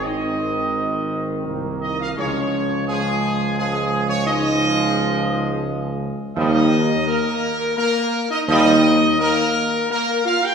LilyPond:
<<
  \new Staff \with { instrumentName = "Trumpet section" } { \time 3/4 \key des \lydian \tempo 4 = 85 ees''2 r8 ees''16 f''16 | des''4 aes'4 aes'8. des''16 | ees''2 r4 | ees''4 bes'4 bes'8. ees''16 |
ees''4 bes'4 bes'8 f''16 g''16 | }
  \new Staff \with { instrumentName = "French horn section" } { \time 3/4 \key des \lydian ees'2 r8 ees'16 f'16 | des'4 aes4 aes8. des'16 | ees'2 r4 | ees'4 bes4 bes8. ees'16 |
ees'4 bes4 bes8 f'16 g'16 | }
  \new Staff \with { instrumentName = "Trombone section" } { \clef bass \time 3/4 \key des \lydian << { c'2 bes4 | aes4 aes4 aes4 | aes2. | g8 r2 r8 |
g8 r2 r8 | } \\ { ees2. | f4 f4 f4 | f2. | f8 r2 r8 |
f8 r2 r8 | } >> }
  \new Staff \with { instrumentName = "Tuba" } { \clef bass \time 3/4 \key des \lydian aes,,2 c,4 | des,2.~ | des,2. | ees,4 r2 |
ees,4 r2 | }
>>